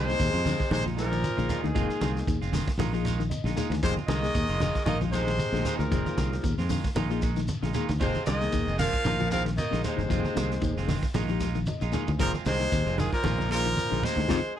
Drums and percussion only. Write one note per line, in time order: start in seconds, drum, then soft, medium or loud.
0.09 snare soft
0.09 shekere soft
0.20 kick medium
0.20 ride bell medium
0.20 shekere loud
0.35 shekere soft
0.45 open hi-hat medium
0.45 high conga medium
0.45 low conga medium
0.45 shekere medium
0.60 kick medium
0.60 shekere soft
0.71 ride bell medium
0.71 high conga loud
0.71 low conga medium
0.71 shekere loud
0.86 high conga medium
0.86 shekere soft
0.98 snare soft
0.98 ride bell medium
0.98 shekere medium
1.12 ride bell medium
1.12 shekere soft
1.24 ride bell medium
1.24 high conga medium
1.24 shekere medium
1.38 shekere soft
1.49 ride bell medium
1.49 high conga medium
1.49 low conga medium
1.49 shekere medium
1.64 high conga medium
1.64 shekere soft
1.76 kick loud
1.76 ride bell medium
1.76 shekere medium
1.90 shekere soft
2.01 snare soft
2.01 ride bell soft
2.01 high conga loud
2.01 shekere medium
2.17 snare soft
2.17 shekere soft
2.27 kick medium
2.27 ride bell medium
2.27 shekere medium
2.42 shekere soft
2.53 snare soft
2.53 open hi-hat medium
2.53 high conga medium
2.53 low conga medium
2.53 shekere medium
2.67 kick medium
2.67 snare soft
2.67 ride bell medium
2.67 shekere soft
2.79 ride bell medium
2.79 high conga loud
2.79 low conga medium
2.79 shekere loud
2.94 shekere soft
3.05 ride bell medium
3.05 low conga medium
3.05 shekere medium
3.20 shekere soft
3.31 ride bell medium
3.31 high conga medium
3.31 shekere medium
3.46 snare soft
3.46 shekere soft
3.57 ride bell medium
3.57 low conga medium
3.57 shekere medium
3.71 snare soft
3.71 ride bell medium
3.71 shekere soft
3.83 kick loud
3.83 ride bell medium
3.83 shekere medium
3.97 high conga medium
3.97 shekere soft
4.08 snare soft
4.08 ride bell medium
4.08 high conga loud
4.08 shekere medium
4.24 snare soft
4.24 shekere soft
4.35 kick medium
4.35 ride bell medium
4.35 shekere loud
4.50 shekere soft
4.60 open hi-hat medium
4.60 high conga medium
4.60 low conga medium
4.60 shekere medium
4.75 kick medium
4.75 shekere soft
4.86 ride bell medium
4.86 high conga loud
4.86 low conga medium
4.86 shekere medium
5.01 high conga medium
5.01 shekere soft
5.12 snare soft
5.12 ride bell medium
5.12 low conga medium
5.12 shekere medium
5.27 snare soft
5.27 ride bell medium
5.27 shekere soft
5.38 ride bell medium
5.38 high conga medium
5.38 shekere loud
5.54 snare soft
5.54 shekere soft
5.65 ride bell medium
5.65 low conga loud
5.65 shekere medium
5.80 shekere soft
5.92 kick loud
5.92 ride bell medium
5.92 shekere medium
6.06 high conga medium
6.06 shekere soft
6.18 kick medium
6.18 snare soft
6.18 ride bell medium
6.18 high conga loud
6.18 shekere medium
6.33 snare soft
6.33 shekere soft
6.44 kick medium
6.44 ride bell medium
6.44 shekere medium
6.59 snare soft
6.59 shekere soft
6.70 open hi-hat medium
6.70 high conga medium
6.70 low conga medium
6.70 shekere medium
6.84 kick medium
6.84 snare soft
6.84 ride bell medium
6.84 shekere soft
6.95 ride bell medium
6.95 high conga loud
6.95 shekere loud
7.11 shekere soft
7.22 kick medium
7.22 ride bell medium
7.22 shekere medium
7.36 snare soft
7.36 shekere soft
7.48 ride bell medium
7.48 high conga medium
7.48 shekere loud
7.63 snare soft
7.63 shekere soft
7.74 ride bell medium
7.74 low conga medium
7.74 shekere medium
7.89 snare soft
7.89 ride bell medium
7.89 high conga medium
7.89 shekere soft
8.00 kick loud
8.00 ride bell medium
8.00 shekere loud
8.14 high conga medium
8.14 shekere soft
8.26 ride bell medium
8.26 high conga loud
8.26 shekere medium
8.41 snare soft
8.41 shekere soft
8.52 kick medium
8.52 ride bell medium
8.52 shekere loud
8.68 shekere soft
8.79 open hi-hat medium
8.79 high conga medium
8.79 low conga medium
8.79 shekere medium
8.93 kick medium
8.93 shekere soft
9.04 ride bell medium
9.04 high conga loud
9.04 shekere loud
9.20 high conga medium
9.20 shekere soft
9.31 ride bell medium
9.31 low conga medium
9.31 shekere medium
9.46 snare soft
9.46 ride bell medium
9.46 shekere soft
9.58 ride bell medium
9.58 high conga medium
9.58 shekere medium
9.73 snare soft
9.73 shekere soft
9.84 ride bell medium
9.84 low conga medium
9.84 shekere medium
9.99 high conga medium
9.99 shekere soft
10.10 kick medium
10.10 ride bell medium
10.10 shekere loud
10.25 high conga medium
10.25 shekere soft
10.36 ride bell soft
10.36 high conga loud
10.36 shekere medium
10.51 snare soft
10.51 shekere soft
10.61 kick medium
10.61 ride bell medium
10.61 shekere loud
10.78 snare soft
10.78 shekere soft
10.89 snare soft
10.89 open hi-hat medium
10.89 high conga medium
10.89 low conga loud
10.89 shekere medium
11.02 kick medium
11.02 ride bell medium
11.02 shekere soft
11.14 ride bell medium
11.14 high conga loud
11.14 shekere loud
11.29 shekere soft
11.40 snare soft
11.40 ride bell medium
11.40 low conga medium
11.40 shekere medium
11.55 shekere soft
11.66 ride bell medium
11.66 high conga medium
11.66 shekere medium
11.81 shekere soft
11.93 ride bell medium
11.93 high conga medium
11.93 low conga medium
11.93 shekere medium
12.07 ride bell medium
12.07 high conga medium
12.07 shekere soft
12.19 kick loud
12.19 ride bell medium
12.19 shekere medium
12.34 high conga medium
12.34 shekere soft
12.46 snare soft
12.46 ride bell medium
12.46 high conga loud
12.46 shekere medium
12.61 shekere soft
12.72 kick medium
12.72 ride bell medium
12.72 shekere loud
12.87 shekere soft
12.98 open hi-hat medium
12.98 high conga medium
12.98 low conga medium
12.98 shekere medium
13.13 kick medium
13.13 shekere soft
13.24 ride bell medium
13.24 high conga loud
13.24 low conga medium
13.24 shekere loud
13.38 high conga medium
13.38 shekere soft
13.51 ride bell medium
13.51 shekere medium
13.65 ride bell medium
13.65 shekere soft
13.76 ride bell medium
13.76 high conga medium
13.76 shekere medium
13.93 shekere soft
14.03 snare soft
14.03 ride bell medium
14.03 low conga medium
14.03 shekere medium
14.16 snare soft
14.16 high conga medium
14.16 shekere soft
14.28 kick medium
14.28 snare medium
14.28 high conga loud
14.28 shekere loud